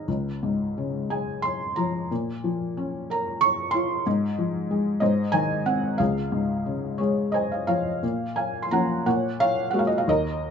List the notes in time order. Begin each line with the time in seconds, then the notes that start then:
0.08 C#2
0.43 G#2
0.78 C#3
1.10 G#3 G#5
1.42 C6
1.76 F3 A#5
2.11 A#2
2.44 F3
2.77 C#4
3.10 A#4 A#5
3.41 C#6
3.71 F4 C6
4.07 G#2
4.38 F3
4.71 G#3
5.00 G#2 C5 D#5
5.32 D#3 G#5
5.66 C4 F#5
5.98 C#2 G#4 F5
6.32 G#2
6.66 C#3
6.98 G#3 G#4 C#5
7.32 C5 D#5 G#5
7.52 F5
7.67 F3 C#5 F5
8.03 A#2
8.36 F5 G#5
8.62 C6
8.71 F3 A#3 C#4 F#5 A#5
9.06 A#2 C#5 F#5
9.40 C#5 F5
9.71 G#3 A#3 F#4 F#5
9.79 F5
9.87 D#5
9.98 F5
10.08 D#2 A#4 D#5